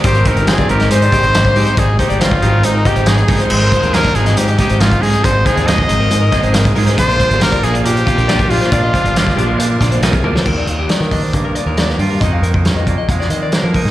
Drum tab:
CC |----------------|----------------|x---------------|----------------|
HH |xxxxxxxxxxxxxxox|x-xxx-x-x-xxxxox|-xxxxxxxxxxxxxox|x-xxx-x-x-xxxxox|
SD |----o--o----o---|----o-------o---|----o--o----o---|----o-----o-o--o|
T1 |----------------|----------------|----------------|----------------|
BD |o-o--o----o--o--|o-o--o----o---o-|--o--o----o--o--|o-o--o----o--o--|

CC |----------------|----------------|x---------------|----------------|
HH |xxxxxxxxxxxxxxox|x-xxx-x-x-xxxx--|--x-x-o-x-x-x-o-|x-x-x-x-x-x-x-o-|
SD |----o-------o--o|----oo----o-o--o|----oo------oo--|----o----o--o--o|
T1 |----------------|--------------o-|----------------|----------------|
BD |o-o--o----o--o--|o-o--o----o--o--|o-----o-o-------|o--o--o-o-----o-|